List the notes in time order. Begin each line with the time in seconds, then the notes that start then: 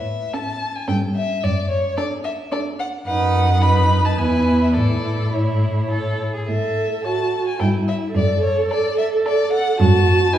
Already playing: A2 E5
0.33 C#4 A4 A5
0.75 G#5
0.88 G2 C#4 A4 G5
1.15 E5
1.44 F#2 D5
1.70 C#5
1.97 D4 A4 D5
2.24 E5
2.52 D4 A4 D5
2.79 F#5
3.06 F#2 D#4 B4 F#5
3.62 D#4 B4 B5
4.05 A5
4.18 E2 E4 B4 G#5
4.61 E5
4.74 A2 E4 A4 D5
5.33 E4 C#5
5.91 A4
6.35 G#4
6.47 A2 A4 E5
7.04 F#4 C#5 A5
7.47 G#5
7.60 G2 E4 A4 G5
7.88 E5
8.15 F#2 A4 D5
8.43 C#5
8.70 A4 D5
8.98 E5
9.26 A4 D5
9.52 F#5
9.79 F#2 F#4 A5
10.33 D#4 B4 G#5